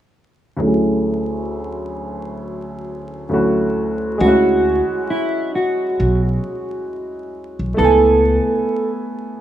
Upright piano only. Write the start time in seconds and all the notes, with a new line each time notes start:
0.57 D2 F#3 A3
0.62 C#4 E4
0.66 G#4
3.29 D2 F#3 A3 C#4 E4
3.34 F#4
4.18 G#3 C#4
4.24 E4 F#4
7.74 A3 B3
7.81 E4 G#5